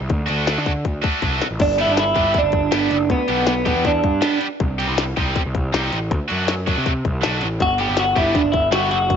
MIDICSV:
0, 0, Header, 1, 5, 480
1, 0, Start_track
1, 0, Key_signature, 1, "major"
1, 0, Tempo, 375469
1, 118, Time_signature, 4, 2, 24, 8
1, 11715, End_track
2, 0, Start_track
2, 0, Title_t, "Clean electric guitar"
2, 0, Program_c, 0, 27
2, 2065, Note_on_c, 0, 62, 88
2, 2275, Note_off_c, 0, 62, 0
2, 2313, Note_on_c, 0, 64, 85
2, 2447, Note_on_c, 0, 62, 70
2, 2448, Note_off_c, 0, 64, 0
2, 2526, Note_off_c, 0, 62, 0
2, 2547, Note_on_c, 0, 64, 81
2, 3025, Note_off_c, 0, 64, 0
2, 3048, Note_on_c, 0, 62, 78
2, 3974, Note_off_c, 0, 62, 0
2, 3979, Note_on_c, 0, 59, 75
2, 4415, Note_off_c, 0, 59, 0
2, 4443, Note_on_c, 0, 59, 74
2, 4934, Note_off_c, 0, 59, 0
2, 4944, Note_on_c, 0, 62, 70
2, 5600, Note_off_c, 0, 62, 0
2, 9743, Note_on_c, 0, 66, 97
2, 9953, Note_off_c, 0, 66, 0
2, 9981, Note_on_c, 0, 67, 86
2, 10215, Note_off_c, 0, 67, 0
2, 10221, Note_on_c, 0, 66, 86
2, 10453, Note_on_c, 0, 64, 79
2, 10455, Note_off_c, 0, 66, 0
2, 10685, Note_off_c, 0, 64, 0
2, 10685, Note_on_c, 0, 62, 81
2, 10891, Note_on_c, 0, 64, 72
2, 10927, Note_off_c, 0, 62, 0
2, 11143, Note_off_c, 0, 64, 0
2, 11148, Note_on_c, 0, 66, 81
2, 11378, Note_off_c, 0, 66, 0
2, 11393, Note_on_c, 0, 66, 75
2, 11715, Note_off_c, 0, 66, 0
2, 11715, End_track
3, 0, Start_track
3, 0, Title_t, "Distorted electric guitar"
3, 0, Program_c, 1, 30
3, 335, Note_on_c, 1, 66, 81
3, 342, Note_on_c, 1, 62, 77
3, 352, Note_on_c, 1, 50, 64
3, 352, Note_on_c, 1, 57, 67
3, 571, Note_off_c, 1, 50, 0
3, 577, Note_off_c, 1, 57, 0
3, 579, Note_off_c, 1, 62, 0
3, 586, Note_off_c, 1, 66, 0
3, 587, Note_on_c, 1, 50, 60
3, 592, Note_on_c, 1, 57, 66
3, 594, Note_on_c, 1, 62, 66
3, 602, Note_on_c, 1, 66, 64
3, 903, Note_off_c, 1, 50, 0
3, 906, Note_off_c, 1, 57, 0
3, 907, Note_off_c, 1, 62, 0
3, 911, Note_off_c, 1, 66, 0
3, 1304, Note_on_c, 1, 66, 82
3, 1313, Note_on_c, 1, 57, 69
3, 1314, Note_on_c, 1, 62, 73
3, 1323, Note_on_c, 1, 50, 66
3, 1532, Note_off_c, 1, 50, 0
3, 1540, Note_off_c, 1, 57, 0
3, 1544, Note_off_c, 1, 62, 0
3, 1545, Note_off_c, 1, 66, 0
3, 1547, Note_on_c, 1, 50, 59
3, 1555, Note_on_c, 1, 57, 66
3, 1560, Note_on_c, 1, 62, 65
3, 1560, Note_on_c, 1, 66, 75
3, 1864, Note_off_c, 1, 50, 0
3, 1867, Note_off_c, 1, 57, 0
3, 1870, Note_off_c, 1, 62, 0
3, 1870, Note_off_c, 1, 66, 0
3, 2283, Note_on_c, 1, 67, 75
3, 2285, Note_on_c, 1, 62, 73
3, 2290, Note_on_c, 1, 59, 64
3, 2301, Note_on_c, 1, 55, 60
3, 2592, Note_off_c, 1, 67, 0
3, 2593, Note_off_c, 1, 62, 0
3, 2595, Note_off_c, 1, 59, 0
3, 2600, Note_off_c, 1, 55, 0
3, 2758, Note_on_c, 1, 67, 84
3, 2765, Note_on_c, 1, 59, 68
3, 2768, Note_on_c, 1, 62, 77
3, 2773, Note_on_c, 1, 55, 67
3, 3069, Note_off_c, 1, 67, 0
3, 3072, Note_off_c, 1, 59, 0
3, 3074, Note_off_c, 1, 62, 0
3, 3076, Note_off_c, 1, 55, 0
3, 3470, Note_on_c, 1, 55, 74
3, 3481, Note_on_c, 1, 59, 78
3, 3484, Note_on_c, 1, 67, 78
3, 3488, Note_on_c, 1, 62, 77
3, 3785, Note_off_c, 1, 55, 0
3, 3790, Note_off_c, 1, 59, 0
3, 3792, Note_off_c, 1, 67, 0
3, 3794, Note_off_c, 1, 62, 0
3, 4192, Note_on_c, 1, 67, 80
3, 4196, Note_on_c, 1, 62, 73
3, 4206, Note_on_c, 1, 59, 70
3, 4207, Note_on_c, 1, 55, 61
3, 4506, Note_off_c, 1, 67, 0
3, 4508, Note_off_c, 1, 62, 0
3, 4513, Note_off_c, 1, 59, 0
3, 4514, Note_off_c, 1, 55, 0
3, 4671, Note_on_c, 1, 67, 78
3, 4678, Note_on_c, 1, 59, 71
3, 4678, Note_on_c, 1, 62, 74
3, 4688, Note_on_c, 1, 55, 68
3, 4985, Note_off_c, 1, 67, 0
3, 4989, Note_off_c, 1, 59, 0
3, 4989, Note_off_c, 1, 62, 0
3, 4994, Note_off_c, 1, 55, 0
3, 5385, Note_on_c, 1, 55, 85
3, 5392, Note_on_c, 1, 59, 77
3, 5395, Note_on_c, 1, 62, 80
3, 5402, Note_on_c, 1, 67, 79
3, 5703, Note_off_c, 1, 55, 0
3, 5706, Note_off_c, 1, 59, 0
3, 5707, Note_off_c, 1, 62, 0
3, 5711, Note_off_c, 1, 67, 0
3, 6115, Note_on_c, 1, 67, 81
3, 6121, Note_on_c, 1, 63, 72
3, 6126, Note_on_c, 1, 60, 65
3, 6137, Note_on_c, 1, 55, 66
3, 6427, Note_off_c, 1, 67, 0
3, 6431, Note_off_c, 1, 63, 0
3, 6433, Note_off_c, 1, 60, 0
3, 6438, Note_off_c, 1, 55, 0
3, 6603, Note_on_c, 1, 67, 86
3, 6606, Note_on_c, 1, 63, 78
3, 6616, Note_on_c, 1, 55, 71
3, 6617, Note_on_c, 1, 60, 80
3, 6912, Note_off_c, 1, 67, 0
3, 6913, Note_off_c, 1, 63, 0
3, 6918, Note_off_c, 1, 55, 0
3, 6919, Note_off_c, 1, 60, 0
3, 7319, Note_on_c, 1, 55, 71
3, 7330, Note_on_c, 1, 60, 73
3, 7335, Note_on_c, 1, 63, 83
3, 7343, Note_on_c, 1, 67, 80
3, 7629, Note_off_c, 1, 55, 0
3, 7635, Note_off_c, 1, 60, 0
3, 7637, Note_off_c, 1, 63, 0
3, 7642, Note_off_c, 1, 67, 0
3, 8027, Note_on_c, 1, 66, 83
3, 8035, Note_on_c, 1, 62, 71
3, 8039, Note_on_c, 1, 57, 58
3, 8047, Note_on_c, 1, 54, 60
3, 8344, Note_off_c, 1, 66, 0
3, 8347, Note_off_c, 1, 62, 0
3, 8349, Note_off_c, 1, 57, 0
3, 8354, Note_off_c, 1, 54, 0
3, 8522, Note_on_c, 1, 66, 78
3, 8530, Note_on_c, 1, 62, 74
3, 8538, Note_on_c, 1, 57, 72
3, 8542, Note_on_c, 1, 54, 61
3, 8831, Note_off_c, 1, 66, 0
3, 8835, Note_off_c, 1, 62, 0
3, 8839, Note_off_c, 1, 57, 0
3, 8841, Note_off_c, 1, 54, 0
3, 9224, Note_on_c, 1, 54, 66
3, 9232, Note_on_c, 1, 57, 75
3, 9238, Note_on_c, 1, 62, 73
3, 9246, Note_on_c, 1, 66, 78
3, 9542, Note_off_c, 1, 54, 0
3, 9546, Note_off_c, 1, 57, 0
3, 9549, Note_off_c, 1, 62, 0
3, 9553, Note_off_c, 1, 66, 0
3, 9951, Note_on_c, 1, 62, 71
3, 9952, Note_on_c, 1, 67, 77
3, 9960, Note_on_c, 1, 59, 68
3, 9966, Note_on_c, 1, 55, 66
3, 10265, Note_off_c, 1, 62, 0
3, 10266, Note_off_c, 1, 67, 0
3, 10270, Note_off_c, 1, 59, 0
3, 10273, Note_off_c, 1, 55, 0
3, 10428, Note_on_c, 1, 67, 75
3, 10437, Note_on_c, 1, 62, 74
3, 10438, Note_on_c, 1, 59, 70
3, 10441, Note_on_c, 1, 55, 64
3, 10744, Note_off_c, 1, 67, 0
3, 10748, Note_off_c, 1, 62, 0
3, 10749, Note_off_c, 1, 59, 0
3, 10750, Note_off_c, 1, 55, 0
3, 11142, Note_on_c, 1, 55, 81
3, 11152, Note_on_c, 1, 59, 78
3, 11156, Note_on_c, 1, 62, 79
3, 11160, Note_on_c, 1, 67, 76
3, 11461, Note_off_c, 1, 55, 0
3, 11466, Note_off_c, 1, 59, 0
3, 11468, Note_off_c, 1, 62, 0
3, 11470, Note_off_c, 1, 67, 0
3, 11715, End_track
4, 0, Start_track
4, 0, Title_t, "Picked electric bass"
4, 0, Program_c, 2, 34
4, 7, Note_on_c, 2, 36, 70
4, 109, Note_off_c, 2, 36, 0
4, 133, Note_on_c, 2, 38, 93
4, 338, Note_off_c, 2, 38, 0
4, 380, Note_on_c, 2, 38, 73
4, 744, Note_off_c, 2, 38, 0
4, 744, Note_on_c, 2, 50, 72
4, 1087, Note_off_c, 2, 50, 0
4, 1087, Note_on_c, 2, 38, 76
4, 1295, Note_off_c, 2, 38, 0
4, 1571, Note_on_c, 2, 36, 73
4, 1777, Note_off_c, 2, 36, 0
4, 1925, Note_on_c, 2, 33, 62
4, 2027, Note_off_c, 2, 33, 0
4, 2044, Note_on_c, 2, 31, 90
4, 2359, Note_off_c, 2, 31, 0
4, 2396, Note_on_c, 2, 31, 75
4, 2715, Note_off_c, 2, 31, 0
4, 2762, Note_on_c, 2, 31, 74
4, 2972, Note_off_c, 2, 31, 0
4, 3106, Note_on_c, 2, 31, 74
4, 3429, Note_off_c, 2, 31, 0
4, 3485, Note_on_c, 2, 31, 77
4, 3694, Note_off_c, 2, 31, 0
4, 3723, Note_on_c, 2, 30, 65
4, 3961, Note_on_c, 2, 38, 95
4, 3980, Note_off_c, 2, 30, 0
4, 4065, Note_off_c, 2, 38, 0
4, 4202, Note_on_c, 2, 35, 75
4, 4731, Note_off_c, 2, 35, 0
4, 4798, Note_on_c, 2, 40, 67
4, 5116, Note_off_c, 2, 40, 0
4, 5162, Note_on_c, 2, 43, 70
4, 5372, Note_off_c, 2, 43, 0
4, 5896, Note_on_c, 2, 36, 90
4, 6206, Note_off_c, 2, 36, 0
4, 6230, Note_on_c, 2, 36, 78
4, 6552, Note_off_c, 2, 36, 0
4, 6618, Note_on_c, 2, 36, 74
4, 6821, Note_off_c, 2, 36, 0
4, 6984, Note_on_c, 2, 36, 75
4, 7290, Note_off_c, 2, 36, 0
4, 7336, Note_on_c, 2, 36, 86
4, 7540, Note_off_c, 2, 36, 0
4, 7579, Note_on_c, 2, 33, 71
4, 7812, Note_off_c, 2, 33, 0
4, 7812, Note_on_c, 2, 38, 89
4, 7911, Note_off_c, 2, 38, 0
4, 8070, Note_on_c, 2, 42, 76
4, 8587, Note_off_c, 2, 42, 0
4, 8661, Note_on_c, 2, 48, 68
4, 8969, Note_off_c, 2, 48, 0
4, 9015, Note_on_c, 2, 36, 69
4, 9222, Note_off_c, 2, 36, 0
4, 9281, Note_on_c, 2, 35, 63
4, 9477, Note_off_c, 2, 35, 0
4, 9508, Note_on_c, 2, 33, 70
4, 9709, Note_off_c, 2, 33, 0
4, 9730, Note_on_c, 2, 31, 86
4, 10043, Note_off_c, 2, 31, 0
4, 10092, Note_on_c, 2, 31, 76
4, 10404, Note_off_c, 2, 31, 0
4, 10435, Note_on_c, 2, 31, 73
4, 10648, Note_off_c, 2, 31, 0
4, 10792, Note_on_c, 2, 31, 75
4, 11113, Note_off_c, 2, 31, 0
4, 11149, Note_on_c, 2, 31, 74
4, 11365, Note_off_c, 2, 31, 0
4, 11410, Note_on_c, 2, 30, 72
4, 11645, Note_on_c, 2, 38, 93
4, 11664, Note_off_c, 2, 30, 0
4, 11715, Note_off_c, 2, 38, 0
4, 11715, End_track
5, 0, Start_track
5, 0, Title_t, "Drums"
5, 124, Note_on_c, 9, 42, 68
5, 127, Note_on_c, 9, 36, 86
5, 252, Note_off_c, 9, 42, 0
5, 255, Note_off_c, 9, 36, 0
5, 363, Note_on_c, 9, 42, 49
5, 491, Note_off_c, 9, 42, 0
5, 604, Note_on_c, 9, 42, 71
5, 605, Note_on_c, 9, 38, 87
5, 732, Note_off_c, 9, 42, 0
5, 733, Note_off_c, 9, 38, 0
5, 847, Note_on_c, 9, 36, 71
5, 847, Note_on_c, 9, 42, 48
5, 975, Note_off_c, 9, 36, 0
5, 975, Note_off_c, 9, 42, 0
5, 1085, Note_on_c, 9, 42, 63
5, 1086, Note_on_c, 9, 36, 72
5, 1213, Note_off_c, 9, 42, 0
5, 1214, Note_off_c, 9, 36, 0
5, 1327, Note_on_c, 9, 36, 79
5, 1327, Note_on_c, 9, 42, 49
5, 1455, Note_off_c, 9, 36, 0
5, 1455, Note_off_c, 9, 42, 0
5, 1562, Note_on_c, 9, 42, 65
5, 1564, Note_on_c, 9, 36, 50
5, 1690, Note_off_c, 9, 42, 0
5, 1692, Note_off_c, 9, 36, 0
5, 1808, Note_on_c, 9, 42, 48
5, 1810, Note_on_c, 9, 38, 61
5, 1936, Note_off_c, 9, 42, 0
5, 1937, Note_off_c, 9, 38, 0
5, 2041, Note_on_c, 9, 42, 67
5, 2041, Note_on_c, 9, 49, 73
5, 2044, Note_on_c, 9, 36, 91
5, 2169, Note_off_c, 9, 42, 0
5, 2169, Note_off_c, 9, 49, 0
5, 2172, Note_off_c, 9, 36, 0
5, 2282, Note_on_c, 9, 42, 57
5, 2410, Note_off_c, 9, 42, 0
5, 2521, Note_on_c, 9, 42, 74
5, 2522, Note_on_c, 9, 38, 90
5, 2649, Note_off_c, 9, 42, 0
5, 2650, Note_off_c, 9, 38, 0
5, 2756, Note_on_c, 9, 42, 53
5, 2759, Note_on_c, 9, 36, 65
5, 2884, Note_off_c, 9, 42, 0
5, 2887, Note_off_c, 9, 36, 0
5, 2994, Note_on_c, 9, 42, 67
5, 2997, Note_on_c, 9, 36, 73
5, 3122, Note_off_c, 9, 42, 0
5, 3125, Note_off_c, 9, 36, 0
5, 3223, Note_on_c, 9, 42, 56
5, 3234, Note_on_c, 9, 36, 77
5, 3351, Note_off_c, 9, 42, 0
5, 3362, Note_off_c, 9, 36, 0
5, 3475, Note_on_c, 9, 42, 77
5, 3476, Note_on_c, 9, 38, 92
5, 3603, Note_off_c, 9, 42, 0
5, 3604, Note_off_c, 9, 38, 0
5, 3718, Note_on_c, 9, 42, 48
5, 3846, Note_off_c, 9, 42, 0
5, 3961, Note_on_c, 9, 36, 86
5, 3969, Note_on_c, 9, 42, 65
5, 4089, Note_off_c, 9, 36, 0
5, 4097, Note_off_c, 9, 42, 0
5, 4194, Note_on_c, 9, 42, 54
5, 4322, Note_off_c, 9, 42, 0
5, 4431, Note_on_c, 9, 42, 72
5, 4432, Note_on_c, 9, 38, 93
5, 4559, Note_off_c, 9, 42, 0
5, 4560, Note_off_c, 9, 38, 0
5, 4678, Note_on_c, 9, 36, 70
5, 4678, Note_on_c, 9, 42, 44
5, 4805, Note_off_c, 9, 36, 0
5, 4806, Note_off_c, 9, 42, 0
5, 4918, Note_on_c, 9, 42, 71
5, 4920, Note_on_c, 9, 36, 76
5, 5046, Note_off_c, 9, 42, 0
5, 5048, Note_off_c, 9, 36, 0
5, 5161, Note_on_c, 9, 36, 76
5, 5161, Note_on_c, 9, 42, 54
5, 5289, Note_off_c, 9, 36, 0
5, 5289, Note_off_c, 9, 42, 0
5, 5393, Note_on_c, 9, 42, 67
5, 5394, Note_on_c, 9, 38, 92
5, 5521, Note_off_c, 9, 42, 0
5, 5522, Note_off_c, 9, 38, 0
5, 5636, Note_on_c, 9, 42, 52
5, 5764, Note_off_c, 9, 42, 0
5, 5883, Note_on_c, 9, 36, 93
5, 5883, Note_on_c, 9, 42, 65
5, 6011, Note_off_c, 9, 36, 0
5, 6011, Note_off_c, 9, 42, 0
5, 6136, Note_on_c, 9, 42, 59
5, 6264, Note_off_c, 9, 42, 0
5, 6365, Note_on_c, 9, 42, 75
5, 6366, Note_on_c, 9, 38, 98
5, 6493, Note_off_c, 9, 42, 0
5, 6494, Note_off_c, 9, 38, 0
5, 6608, Note_on_c, 9, 42, 53
5, 6609, Note_on_c, 9, 36, 71
5, 6736, Note_off_c, 9, 42, 0
5, 6737, Note_off_c, 9, 36, 0
5, 6848, Note_on_c, 9, 42, 74
5, 6849, Note_on_c, 9, 36, 73
5, 6976, Note_off_c, 9, 36, 0
5, 6976, Note_off_c, 9, 42, 0
5, 7091, Note_on_c, 9, 36, 76
5, 7095, Note_on_c, 9, 42, 60
5, 7219, Note_off_c, 9, 36, 0
5, 7223, Note_off_c, 9, 42, 0
5, 7336, Note_on_c, 9, 42, 73
5, 7338, Note_on_c, 9, 38, 93
5, 7464, Note_off_c, 9, 42, 0
5, 7465, Note_off_c, 9, 38, 0
5, 7576, Note_on_c, 9, 42, 58
5, 7704, Note_off_c, 9, 42, 0
5, 7812, Note_on_c, 9, 36, 86
5, 7817, Note_on_c, 9, 42, 68
5, 7940, Note_off_c, 9, 36, 0
5, 7945, Note_off_c, 9, 42, 0
5, 8055, Note_on_c, 9, 42, 51
5, 8183, Note_off_c, 9, 42, 0
5, 8284, Note_on_c, 9, 42, 69
5, 8285, Note_on_c, 9, 38, 97
5, 8412, Note_off_c, 9, 42, 0
5, 8413, Note_off_c, 9, 38, 0
5, 8532, Note_on_c, 9, 36, 72
5, 8534, Note_on_c, 9, 42, 52
5, 8659, Note_off_c, 9, 36, 0
5, 8662, Note_off_c, 9, 42, 0
5, 8770, Note_on_c, 9, 36, 72
5, 8773, Note_on_c, 9, 42, 66
5, 8898, Note_off_c, 9, 36, 0
5, 8900, Note_off_c, 9, 42, 0
5, 9012, Note_on_c, 9, 36, 78
5, 9013, Note_on_c, 9, 42, 49
5, 9140, Note_off_c, 9, 36, 0
5, 9141, Note_off_c, 9, 42, 0
5, 9247, Note_on_c, 9, 42, 69
5, 9248, Note_on_c, 9, 38, 92
5, 9375, Note_off_c, 9, 42, 0
5, 9376, Note_off_c, 9, 38, 0
5, 9474, Note_on_c, 9, 42, 50
5, 9602, Note_off_c, 9, 42, 0
5, 9719, Note_on_c, 9, 42, 64
5, 9721, Note_on_c, 9, 36, 88
5, 9846, Note_off_c, 9, 42, 0
5, 9849, Note_off_c, 9, 36, 0
5, 9951, Note_on_c, 9, 42, 53
5, 10079, Note_off_c, 9, 42, 0
5, 10186, Note_on_c, 9, 42, 73
5, 10187, Note_on_c, 9, 38, 94
5, 10314, Note_off_c, 9, 42, 0
5, 10315, Note_off_c, 9, 38, 0
5, 10435, Note_on_c, 9, 36, 71
5, 10439, Note_on_c, 9, 42, 53
5, 10563, Note_off_c, 9, 36, 0
5, 10566, Note_off_c, 9, 42, 0
5, 10673, Note_on_c, 9, 36, 72
5, 10676, Note_on_c, 9, 42, 73
5, 10801, Note_off_c, 9, 36, 0
5, 10804, Note_off_c, 9, 42, 0
5, 10912, Note_on_c, 9, 42, 55
5, 10914, Note_on_c, 9, 36, 75
5, 11040, Note_off_c, 9, 42, 0
5, 11042, Note_off_c, 9, 36, 0
5, 11151, Note_on_c, 9, 42, 77
5, 11153, Note_on_c, 9, 38, 97
5, 11279, Note_off_c, 9, 42, 0
5, 11280, Note_off_c, 9, 38, 0
5, 11393, Note_on_c, 9, 42, 57
5, 11521, Note_off_c, 9, 42, 0
5, 11634, Note_on_c, 9, 36, 91
5, 11642, Note_on_c, 9, 42, 70
5, 11715, Note_off_c, 9, 36, 0
5, 11715, Note_off_c, 9, 42, 0
5, 11715, End_track
0, 0, End_of_file